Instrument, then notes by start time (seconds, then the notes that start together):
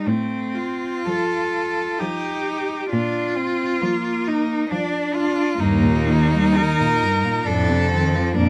cello
0.05 A2 A3 C4
0.55 F4
1.07 F3 A4
1.99 F3 D#4 G4
2.90 A#2 D4 F4
3.36 C4
3.82 F3 A#3
4.27 D#4
4.70 F3 D4
5.15 F4
5.59 D#2 G2 A#3 D#4
5.82 A#2
6.07 D#3
6.34 G3
6.56 D#3 A#4
6.81 A#2
7.03 G2
7.24 A#2
7.46 F2 A2 D4 A4
7.69 C3
7.91 D#3 C4
8.14 F3
8.36 F2 A#2 A#3 D4